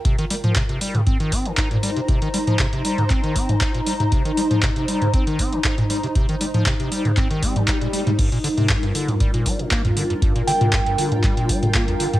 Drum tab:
CC |----------------|----------------|----------------|----------------|
HH |xxoxxxoxxxoxxxox|xxoxxxoxxxoxxxox|xxoxxxoxxxoxxxox|xxoxxxoxxxoxxxox|
CP |----x-------x---|----x---x---x---|----x-------x---|----x---x---x---|
T2 |---o---o-----o--|---o---o---o---o|---o---o-----o--|---o---o---o---o|
BD |o---o---o-o-o---|o---o---o-o-o---|o---o---o-o-o---|o---o---o-o-o---|

CC |x---------------|----------------|
HH |xxoxxxoxxxoxxxox|xxoxxxoxxxoxxxox|
CP |----x-------x---|----x---x---x---|
T2 |---o---o-----o--|---o---o---o---o|
BD |o---o---o-o-o---|o---o---o-o-o---|